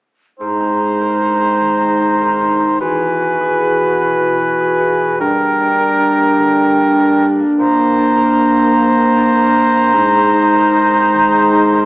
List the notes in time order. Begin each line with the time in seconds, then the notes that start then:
0.40 G#2 G#3 D#4 C5 A#5
0.60 C4
0.80 D#4
1.01 A#4
1.21 D#4
1.41 C4
1.61 D#3
1.80 C4
2.01 D#4
2.21 A#4
2.41 D#4
2.61 C4
2.81 E2 E3 F#4 B4 G#5
3.01 B3
3.21 F#4
3.40 G#4
3.61 F#4
3.81 B3
4.01 B2
4.21 B3
4.41 F#4
4.60 G#4
4.80 F#4
5.00 B3
5.19 G2 G3 D4 A#4 G5
5.41 A#3
5.60 D4
5.80 A#4
5.99 D4
6.20 A#3
6.39 D3
6.59 A#3
6.79 D4
6.99 A#4
7.19 D4
7.39 A#3
7.58 A#2 A#3 C5 A#5
7.79 C4
7.98 D4
8.17 A#4
8.38 D4
8.57 C4
8.77 F3
8.97 C4
9.17 D4
9.35 A#4
9.56 D4
9.75 C4
9.93 G#2 G#3 D#4
10.14 C4
10.34 D#4
10.54 A#4
10.74 D#4
10.94 C4
11.13 D#3
11.33 C4
11.53 D#4
11.73 A#4